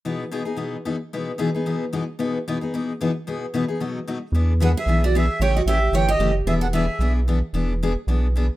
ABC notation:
X:1
M:4/4
L:1/8
Q:"Swing" 1/4=224
K:E
V:1 name="Accordion"
z8 | z8 | z8 | z8 |
z2 f e2 =d e2 | =g d e2 g d2 z | e f e3 z3 | z8 |]
V:2 name="Steel-string acoustic guitar"
z8 | z8 | z8 | z8 |
z2 B G2 F G2 | c F =G2 c G2 z | G A G3 z3 | z8 |]
V:3 name="Steel-string acoustic guitar"
[B,,E,B,DG] z [B,,E,B,DG] [B,DG] [B,,E,B,DG] z [B,,E,B,DG] z | [B,,E,B,DG] z [B,,E,B,DG] [B,DG] [B,,E,B,DG] z [B,,E,B,DG] z | [B,,E,B,DG] z [B,,E,B,DG] [B,DG] [B,,E,B,DG] z [B,,E,B,DG] z | [B,,E,B,DG] z [B,,E,B,DG] [B,DG] [B,,F,A,DF] z [B,,F,A,DF] z |
[E,B,=DG] z [E,B,DG] z [E,B,DG] z [E,B,DG] z | [C,E,A,C=G] z [C,E,A,CG] z [C,E,A,CG] z [C,E,A,CG] z | [E,B,=DG] z [E,B,DG] z [E,B,DG] z [E,B,DG] z | [E,B,=DG] z [E,B,DG] z [E,B,DG] z [E,B,DG] z |]
V:4 name="Analog synth bass" clef=bass
z8 | z8 | z8 | z8 |
E,,4 B,,,4 | A,,,2 A,,,2 =G,,,2 F,,,2 | E,,,4 B,,,4 | E,,,4 B,,,4 |]